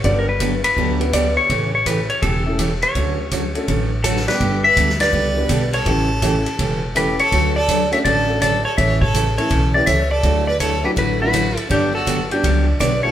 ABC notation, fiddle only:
X:1
M:4/4
L:1/8
Q:"Swing" 1/4=165
K:D
V:1 name="Fiddle"
z8 | z8 | z6 F G- | G B2 B4 A- |
A4- A z G A- | A A2 c A2 A A | c A2 A2 B c A- | A B A G F F3 |
D F2 D2 z B A |]